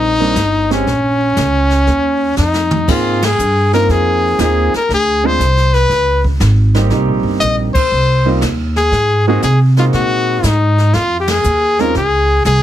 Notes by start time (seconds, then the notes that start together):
Already playing: A#1 G3 A#3 C4 D#4 F4
0.20 G3 A#3 C4 D4
0.36 G1, snare, hi-hat pedal
0.70 G#3 C4 C#4 G4, snare
0.86 A#1, brush sweep, snare
1.36 C#2, snare, hi-hat pedal
1.70 snare
1.87 D#2, brush sweep, snare
2.37 F2 D#4, snare, hi-hat pedal
2.54 snare
2.71 mid tom
2.88 G#2 A#3 C4 D#4 F4 G#4, brush sweep, kick, snare, crash
3.22 G#4, snare, ride
3.38 G2, hi-hat pedal
3.73 A#3 C4 D#4 F4 A#4, snare
3.88 F2 G#4, brush sweep, snare
4.38 D#2 A#3 C4 D#4 F4 G#4, snare, hi-hat pedal
4.73 A#4, muted upright bass stroke, snare
4.89 D2, brush sweep, snare
4.94 G#4
5.24 G#3 C4 D4 F4 G#4 C5
5.39 C2, snare, hi-hat pedal
5.57 snare
5.74 B4, snare
5.89 C#2, brush sweep, snare
6.24 kick
6.40 G#1, snare, hi-hat pedal
6.74 G3 A#3 C4 D#4 G4, snare
6.90 C2 G3 A#3 C4 D#4 G4, brush sweep, snare
7.07 A#1
7.23 G1
7.40 A#1 D#5, snare, hi-hat pedal
7.74 C5, muted upright bass stroke, kick, ride
7.91 C2, brush sweep
8.25 G3 A#3 C4 D#4 F4
8.41 D#2, snare, hi-hat pedal
8.76 G#4, snare
8.91 G#2, brush sweep, snare
9.27 G#3 A#3 C4 D#4 F#4 G#4
9.42 C3 G#4, snare, hi-hat pedal
9.77 G#3 A#3 C4 D#4 F4 F#4, snare
9.93 A#2 F#4, brush sweep, snare
10.43 G#2 D#4, snare, hi-hat pedal
10.78 snare
10.93 F2 F4, brush sweep, snare
11.20 G4
11.28 G#4, snare, ride
11.44 D#2, hi-hat pedal
11.79 G#3 C4 C#4 D#4 F4 A#4, snare
11.95 C#2 G#4, brush sweep, snare
12.45 C2 G#4, snare, hi-hat pedal